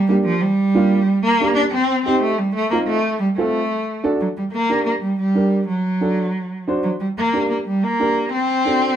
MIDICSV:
0, 0, Header, 1, 3, 480
1, 0, Start_track
1, 0, Key_signature, -2, "minor"
1, 0, Tempo, 329308
1, 614, Time_signature, 4, 2, 24, 8
1, 6362, Key_signature, -2, "minor"
1, 13062, End_track
2, 0, Start_track
2, 0, Title_t, "Upright piano"
2, 0, Program_c, 0, 0
2, 125, Note_on_c, 0, 58, 66
2, 132, Note_on_c, 0, 62, 61
2, 135, Note_on_c, 0, 67, 74
2, 465, Note_off_c, 0, 58, 0
2, 469, Note_off_c, 0, 62, 0
2, 471, Note_off_c, 0, 67, 0
2, 1088, Note_on_c, 0, 58, 77
2, 1089, Note_on_c, 0, 62, 71
2, 1100, Note_on_c, 0, 65, 84
2, 1425, Note_off_c, 0, 58, 0
2, 1426, Note_off_c, 0, 62, 0
2, 1432, Note_off_c, 0, 65, 0
2, 2043, Note_on_c, 0, 58, 69
2, 2050, Note_on_c, 0, 62, 71
2, 2054, Note_on_c, 0, 67, 72
2, 2382, Note_off_c, 0, 58, 0
2, 2386, Note_off_c, 0, 62, 0
2, 2388, Note_off_c, 0, 67, 0
2, 2995, Note_on_c, 0, 60, 73
2, 2999, Note_on_c, 0, 63, 69
2, 3004, Note_on_c, 0, 67, 84
2, 3337, Note_off_c, 0, 60, 0
2, 3339, Note_off_c, 0, 63, 0
2, 3341, Note_off_c, 0, 67, 0
2, 3966, Note_on_c, 0, 60, 64
2, 3966, Note_on_c, 0, 63, 66
2, 3975, Note_on_c, 0, 65, 77
2, 4301, Note_off_c, 0, 60, 0
2, 4301, Note_off_c, 0, 63, 0
2, 4306, Note_off_c, 0, 65, 0
2, 4924, Note_on_c, 0, 60, 79
2, 4928, Note_on_c, 0, 65, 67
2, 4938, Note_on_c, 0, 69, 80
2, 5259, Note_off_c, 0, 60, 0
2, 5261, Note_off_c, 0, 65, 0
2, 5267, Note_off_c, 0, 69, 0
2, 5883, Note_on_c, 0, 62, 80
2, 5888, Note_on_c, 0, 66, 71
2, 5892, Note_on_c, 0, 69, 92
2, 6219, Note_off_c, 0, 62, 0
2, 6221, Note_off_c, 0, 66, 0
2, 6223, Note_off_c, 0, 69, 0
2, 6845, Note_on_c, 0, 62, 70
2, 6847, Note_on_c, 0, 67, 67
2, 6854, Note_on_c, 0, 70, 80
2, 7180, Note_off_c, 0, 62, 0
2, 7181, Note_off_c, 0, 67, 0
2, 7185, Note_off_c, 0, 70, 0
2, 7797, Note_on_c, 0, 62, 63
2, 7806, Note_on_c, 0, 67, 62
2, 7809, Note_on_c, 0, 70, 70
2, 8136, Note_off_c, 0, 62, 0
2, 8141, Note_off_c, 0, 67, 0
2, 8143, Note_off_c, 0, 70, 0
2, 8759, Note_on_c, 0, 62, 63
2, 8766, Note_on_c, 0, 66, 63
2, 8774, Note_on_c, 0, 69, 81
2, 9099, Note_off_c, 0, 62, 0
2, 9102, Note_off_c, 0, 66, 0
2, 9106, Note_off_c, 0, 69, 0
2, 9729, Note_on_c, 0, 62, 75
2, 9739, Note_on_c, 0, 66, 74
2, 9742, Note_on_c, 0, 72, 79
2, 10065, Note_off_c, 0, 62, 0
2, 10070, Note_off_c, 0, 66, 0
2, 10071, Note_off_c, 0, 72, 0
2, 10688, Note_on_c, 0, 62, 70
2, 10697, Note_on_c, 0, 67, 62
2, 10700, Note_on_c, 0, 70, 83
2, 11026, Note_off_c, 0, 62, 0
2, 11031, Note_off_c, 0, 67, 0
2, 11032, Note_off_c, 0, 70, 0
2, 11656, Note_on_c, 0, 62, 66
2, 11661, Note_on_c, 0, 67, 62
2, 11664, Note_on_c, 0, 70, 74
2, 11992, Note_off_c, 0, 62, 0
2, 11994, Note_off_c, 0, 67, 0
2, 11996, Note_off_c, 0, 70, 0
2, 12610, Note_on_c, 0, 62, 70
2, 12618, Note_on_c, 0, 66, 61
2, 12627, Note_on_c, 0, 69, 74
2, 12951, Note_off_c, 0, 62, 0
2, 12954, Note_off_c, 0, 66, 0
2, 12959, Note_off_c, 0, 69, 0
2, 13062, End_track
3, 0, Start_track
3, 0, Title_t, "Cello"
3, 0, Program_c, 1, 42
3, 121, Note_on_c, 1, 55, 92
3, 232, Note_off_c, 1, 55, 0
3, 362, Note_on_c, 1, 53, 96
3, 603, Note_on_c, 1, 55, 100
3, 625, Note_off_c, 1, 53, 0
3, 1776, Note_off_c, 1, 55, 0
3, 1784, Note_on_c, 1, 58, 112
3, 2242, Note_off_c, 1, 58, 0
3, 2260, Note_on_c, 1, 62, 102
3, 2375, Note_off_c, 1, 62, 0
3, 2508, Note_on_c, 1, 60, 94
3, 2963, Note_off_c, 1, 60, 0
3, 2993, Note_on_c, 1, 60, 89
3, 3222, Note_off_c, 1, 60, 0
3, 3242, Note_on_c, 1, 57, 82
3, 3472, Note_on_c, 1, 55, 85
3, 3493, Note_off_c, 1, 57, 0
3, 3707, Note_off_c, 1, 55, 0
3, 3715, Note_on_c, 1, 57, 97
3, 3932, Note_off_c, 1, 57, 0
3, 3941, Note_on_c, 1, 58, 95
3, 4054, Note_off_c, 1, 58, 0
3, 4190, Note_on_c, 1, 57, 99
3, 4643, Note_off_c, 1, 57, 0
3, 4669, Note_on_c, 1, 55, 85
3, 4780, Note_off_c, 1, 55, 0
3, 4918, Note_on_c, 1, 57, 76
3, 5822, Note_off_c, 1, 57, 0
3, 6131, Note_on_c, 1, 54, 70
3, 6237, Note_off_c, 1, 54, 0
3, 6369, Note_on_c, 1, 55, 82
3, 6476, Note_off_c, 1, 55, 0
3, 6593, Note_on_c, 1, 58, 94
3, 7044, Note_off_c, 1, 58, 0
3, 7083, Note_on_c, 1, 58, 81
3, 7191, Note_off_c, 1, 58, 0
3, 7313, Note_on_c, 1, 55, 78
3, 7541, Note_off_c, 1, 55, 0
3, 7549, Note_on_c, 1, 55, 94
3, 8226, Note_off_c, 1, 55, 0
3, 8287, Note_on_c, 1, 54, 84
3, 9670, Note_off_c, 1, 54, 0
3, 9961, Note_on_c, 1, 54, 82
3, 10071, Note_off_c, 1, 54, 0
3, 10204, Note_on_c, 1, 55, 80
3, 10314, Note_off_c, 1, 55, 0
3, 10453, Note_on_c, 1, 58, 94
3, 10899, Note_off_c, 1, 58, 0
3, 10934, Note_on_c, 1, 58, 76
3, 11042, Note_off_c, 1, 58, 0
3, 11168, Note_on_c, 1, 55, 90
3, 11418, Note_on_c, 1, 58, 101
3, 11440, Note_off_c, 1, 55, 0
3, 12130, Note_off_c, 1, 58, 0
3, 12138, Note_on_c, 1, 60, 107
3, 13062, Note_off_c, 1, 60, 0
3, 13062, End_track
0, 0, End_of_file